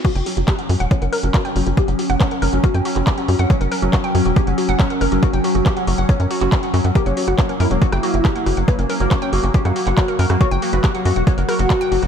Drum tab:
CC |x---------------|----------------|----------------|----------------|
HH |xxoxxxoxxxoxxxox|xxoxxxoxxxoxxxox|xxoxxxoxxxoxxxox|xxoxxxoxxxoxxxox|
CP |----x-------x---|----x------xx---|----x-------x---|----x------xx---|
SD |----------------|----------------|----------------|----------------|
BD |o---o---o---o---|o---o---o---o---|o---o---o---o---|o---o---o---o---|

CC |----------------|----------------|----------------|
HH |xxoxxxoxxxoxxxox|xxoxxxoxxxoxxxox|xxoxxxoxxxoxxxox|
CP |----x-------x---|----x------xx---|----x-------x---|
SD |---r-----r----r-|----r----r-----r|----r-----r----r|
BD |o---o---o---o---|o---o---o---o---|o---o---o---o---|